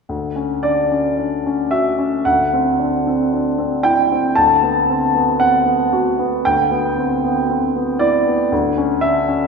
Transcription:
0.09 D2
0.36 C#4
0.63 D4 D5
0.92 C#4
1.18 D4
1.46 C#4
1.71 F#4 E5
1.99 C#4
2.25 D2 F#5
2.53 C4
2.79 D4
3.07 C4
3.33 D4
3.58 C4
3.83 E4 G5
4.12 C4
4.35 D2 A5
4.63 B3
4.89 C4
5.15 B3
5.40 C4 F#5
5.65 B3
5.93 F#4
6.19 B3
6.45 D2 G5
6.71 B3
6.98 C4
7.24 B3
7.50 C4
7.76 B3
7.99 E4 D5
8.27 B3
8.52 D2
8.78 C#4
9.01 D4 E5
9.28 C#4

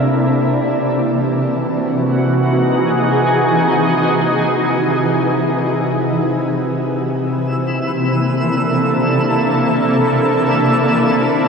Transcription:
Already playing: C3 A#3 D4 E4 A4
0.49 E3
1.06 F#4
1.72 D#4
1.91 G#4
6.77 C3 E3 E6
7.36 A#3
7.81 D4 E4
7.86 A4

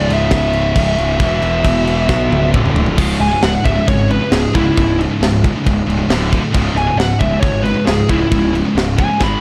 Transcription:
Already playing: C#2 G#2 C#3 D5
0.08 C#1 C#2 G#2 C#3, crash
0.13 E5
0.31 C#1 E5, kick, snare, crash
0.53 crash
0.75 C#1, kick, crash
0.98 C#1, crash
1.18 E1 E2 B2 E3, kick, crash
1.42 E1, crash
1.65 E1, kick, crash
1.84 E2 B2 E3, crash
2.07 B1 B2 F#3 B3, kick, snare
2.30 C#1, high tom
2.52 D1 D2 A2 D3, kick, mid tom
2.66 mid tom
2.74 D1, floor tom
2.86 floor tom
2.98 C#1 C#2 G#2 C#3, kick, crash
3.20 C#1 C#2 G#2 G#5, crash
3.31 C#2 G#2
3.42 C#1 C#2 G#2 F#5, snare, crash
3.64 C#1 C#2 G#2 C#3 E5, kick, crash
3.76 C#2 G#2
3.87 G#1 C#2 G#2 C#5, kick, crash
4.10 C#2 G#2 B4, crash
4.21 C#2 G#2
4.32 C#1 C#2 G#2 G#4, snare, crash
4.53 C#1 C#2 G#2 C#3 E4, kick, crash
4.66 C#2 G#2
4.77 C#1 C#2 G#2 C#3, kick, crash
4.99 C#2 G#2, crash
5.11 C#2 G#2
5.21 C#1 C#2 G#2, snare, crash
5.44 C#2 G#2 C#3, kick, crash
5.56 C#2 G#2
5.66 C#1 C#2 G#2, kick, crash
5.87 C#1 C#2 G#2, crash
5.98 C#2 G#2
6.09 D1 D2 A2 D3, snare, crash
6.30 D2 A2 D3, kick, crash
6.41 D2 A2
6.52 C#1 C#2 G#2 C#3, kick, crash
6.75 C#1 C#2 G#2 G#5, crash
6.87 C#2 G#2
6.97 C#1 C#2 G#2 F#5, snare, crash
7.19 C#1 C#2 G#2 C#3 E5, kick, crash
7.31 C#2 G#2
7.41 G#1 C#2 G#2 C#5, kick, crash
7.62 C#2 G#2 B4, crash
7.76 C#2 G#2
7.86 C#1 C#2 G#2 G#4, snare, crash
8.09 C#1 C#2 G#2 C#3 E4, kick, crash
8.20 C#2 G#2
8.31 C#1 C#2 G#2 C#3, kick, crash
8.53 C#2 G#2, crash
8.64 C#2 G#2
8.75 C#1 C#2 G#2, snare, crash
8.97 C#2 G#2 C#3 G#5, kick, crash
9.08 C#2 G#2
9.20 G#1 G#2 D#3 G#3 B5, kick, snare

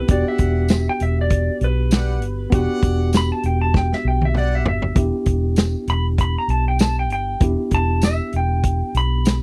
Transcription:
0.08 E1 B3 D4 F#4 G4 D5 F#5, kick, closed hi-hat
0.28 E5
0.38 E1, kick, closed hi-hat
0.68 snare, closed hi-hat, tambourine
0.89 G5
1.00 E1 E5, closed hi-hat
1.21 D5
1.30 kick, closed hi-hat
1.61 B1 B4, closed hi-hat
1.90 G3 D5 F#5, snare, closed hi-hat, tambourine
2.22 G1, closed hi-hat
2.50 E1 B3 D4 F#4 G4 D5 F#5, kick, closed hi-hat
2.82 E1, kick, closed hi-hat
3.13 snare, closed hi-hat, tambourine
3.17 B5
3.32 A5
3.43 E1 G5, closed hi-hat
3.62 A5
3.74 G5, kick, snare
3.93 E5, snare
4.05 B1 G5
4.21 E5, high tom
4.34 G3 D5 F#5, mid tom
4.55 E5
4.65 G1 E5, floor tom
4.82 floor tom
4.95 E1 B3 D4 E4 G4, kick, closed hi-hat
5.26 E1, kick, closed hi-hat
5.56 snare, closed hi-hat, tambourine
5.87 E1 B5, closed hi-hat
6.18 B5, kick, closed hi-hat
6.38 A#5
6.48 B1 A5, closed hi-hat
6.68 G5
6.79 A5, snare, closed hi-hat, tambourine
6.99 G5
7.10 G1 G5, closed hi-hat
7.40 E1 B3 D4 E4 G4, kick, closed hi-hat
7.71 E1 A5, kick, closed hi-hat
8.02 E5, snare, closed hi-hat, tambourine
8.32 E1 G5, closed hi-hat
8.63 kick, closed hi-hat
8.95 B1 B5, closed hi-hat
9.25 snare, closed hi-hat, tambourine

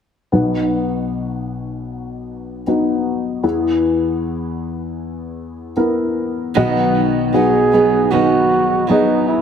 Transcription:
0.32 B1 B2 B3 D#4 F#4
2.67 B3 D#4 F#4
3.43 E2 E3 B3 E4 G#4
5.76 B3 E4 A#4
6.54 B1 B2 D#3 F#3 B3 D#4 F#4 B4
7.33 F#3 B3 D#4 F#4 G#4 B4
7.72 F#3 B3 D#4 G#4 B4
8.11 B2 D#3 F#3 B3 D#4 F#4 G#4 B4
8.87 F#3 B3 D#4 G#4 B4 D#5
9.28 E4

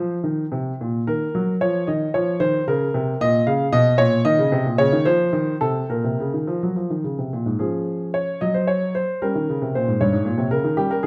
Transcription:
Already playing: F3 C5
0.24 D#3
0.52 C3
0.81 A#2
1.07 D#3 A#4
1.35 F#3
1.61 F3 C#5
1.87 D#3 D#5
2.14 F3 C#5
2.40 D#3 C5
2.67 C#3 A#4
2.94 C3
3.21 A#2 D#5
3.47 C#3 F5
3.72 B2 D#5
3.98 A#2 C#5
4.25 D#3 D#5
4.39 C#3
4.52 C3
4.65 A#2
4.78 C#3 C#5
4.93 D#3
5.05 F3 C5
5.33 D#3
5.61 C3 A4
5.89 A#2 A#4
6.04 C3
6.20 C#3
6.34 D#3
6.47 F3
6.63 F#3
6.76 F3
6.90 D#3
7.04 C#3
7.19 C3
7.33 A#2
7.46 G#2
7.59 F3 C#4 G#4
8.14 C#5
8.41 F#3 D#5
8.54 C5
8.67 C#5
8.95 C5
9.22 G3 C#4 A#4
9.35 D#3
9.49 C#3
9.62 C3
9.75 A#2 C5
9.88 G#2
10.01 G2 C#5
10.13 G#2
10.25 A#2
10.38 C3
10.51 C#3 A#4
10.64 D#3
10.77 G3 C#4 G4
10.91 A#4
11.03 D#3 G#4

